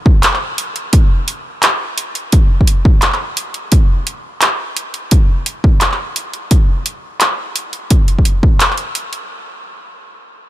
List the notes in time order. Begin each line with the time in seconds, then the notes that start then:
0.06 kick
0.23 clap, closed hi-hat
0.34 clap
0.58 closed hi-hat
0.76 closed hi-hat
0.93 kick, closed hi-hat
1.28 closed hi-hat
1.63 clap, closed hi-hat
1.98 closed hi-hat
2.15 closed hi-hat
2.32 kick, closed hi-hat
2.61 kick
2.67 closed hi-hat
2.85 kick
3.02 clap, closed hi-hat
3.12 clap
3.37 closed hi-hat
3.54 closed hi-hat
3.72 kick, closed hi-hat
4.07 closed hi-hat
4.42 clap, closed hi-hat
4.77 closed hi-hat
4.94 closed hi-hat
5.11 kick, closed hi-hat
5.46 closed hi-hat
5.64 kick
5.81 clap, closed hi-hat
5.92 clap
6.16 closed hi-hat
6.34 closed hi-hat
6.51 kick, closed hi-hat
6.86 closed hi-hat
7.21 clap, closed hi-hat
7.56 closed hi-hat
7.73 closed hi-hat
7.90 kick, closed hi-hat
8.08 closed hi-hat
8.19 kick
8.25 closed hi-hat
8.43 kick
8.60 clap, closed hi-hat
8.71 clap
8.78 closed hi-hat
8.95 closed hi-hat
9.13 closed hi-hat